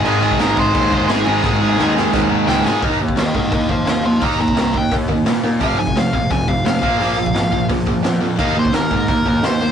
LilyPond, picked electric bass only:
\new Staff \with { instrumentName = "Picked electric bass" } { \clef bass \time 4/4 \key aes \major \tempo 4 = 173 aes,,8 aes,,8 aes,,8 aes,,8 ees,8 ees,8 aes,,8 aes,,8 | aes,,8 aes,,8 ees,4 ees,8 ees,8 des,8 aes,8 | \key ees \mixolydian ees,8 ees,8 ees,8 aes,8 ees,8 ees,8 ees,4 | ees,4 c,8 ees,8 ees,8 ees,8 bes,8 bes,8 |
f,,8 f,,8 f,,8 bes,,8 f,,8 f,,8 f,,8 bes,,8 | bes,,4 aes,,8 bes,,8 bes,,8 bes,,8 f,8 f,8 | ees,8 ees,8 ees,8 aes,8 ees,8 ees,8 ees,4 | }